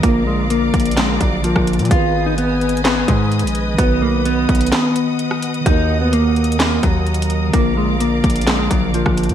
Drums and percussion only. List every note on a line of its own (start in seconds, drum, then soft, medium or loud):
0.03 kick loud
0.03 closed hi-hat medium
0.50 closed hi-hat medium
0.74 kick loud
0.74 closed hi-hat medium
0.80 closed hi-hat medium
0.85 closed hi-hat medium
0.91 closed hi-hat medium
0.97 snare loud
0.97 clap medium
0.97 closed hi-hat medium
1.21 kick medium
1.21 closed hi-hat medium
1.44 closed hi-hat medium
1.56 kick medium
1.56 cross-stick loud
1.67 closed hi-hat medium
1.67 open hi-hat medium
1.73 closed hi-hat medium
1.79 closed hi-hat medium
1.85 closed hi-hat medium
1.91 kick loud
1.91 closed hi-hat medium
2.38 closed hi-hat medium
2.61 closed hi-hat soft
2.69 closed hi-hat medium
2.77 closed hi-hat medium
2.85 snare loud
2.85 clap medium
2.85 closed hi-hat medium
3.08 kick medium
3.08 closed hi-hat medium
3.32 closed hi-hat soft
3.39 closed hi-hat medium
3.47 closed hi-hat medium
3.55 closed hi-hat medium
3.79 kick loud
3.79 closed hi-hat medium
4.25 closed hi-hat medium
4.49 kick medium
4.49 closed hi-hat soft
4.55 closed hi-hat medium
4.61 closed hi-hat medium
4.66 closed hi-hat medium
4.72 snare loud
4.72 clap medium
4.72 closed hi-hat medium
4.96 closed hi-hat medium
5.19 closed hi-hat medium
5.31 cross-stick loud
5.42 closed hi-hat medium
5.42 open hi-hat medium
5.54 closed hi-hat soft
5.66 kick loud
5.66 closed hi-hat medium
6.13 closed hi-hat medium
6.36 closed hi-hat soft
6.44 closed hi-hat medium
6.52 closed hi-hat medium
6.60 snare loud
6.60 clap medium
6.60 closed hi-hat medium
6.83 kick medium
6.83 closed hi-hat medium
7.07 closed hi-hat soft
7.14 closed hi-hat medium
7.22 closed hi-hat medium
7.30 closed hi-hat medium
7.53 kick loud
7.53 closed hi-hat medium
8.00 closed hi-hat medium
8.24 kick medium
8.24 closed hi-hat medium
8.30 closed hi-hat medium
8.36 closed hi-hat medium
8.41 closed hi-hat medium
8.47 snare loud
8.47 clap medium
8.47 closed hi-hat medium
8.71 kick medium
8.71 closed hi-hat medium
8.94 closed hi-hat medium
9.06 kick loud
9.06 cross-stick loud
9.17 closed hi-hat medium
9.17 open hi-hat medium
9.23 closed hi-hat medium
9.29 closed hi-hat medium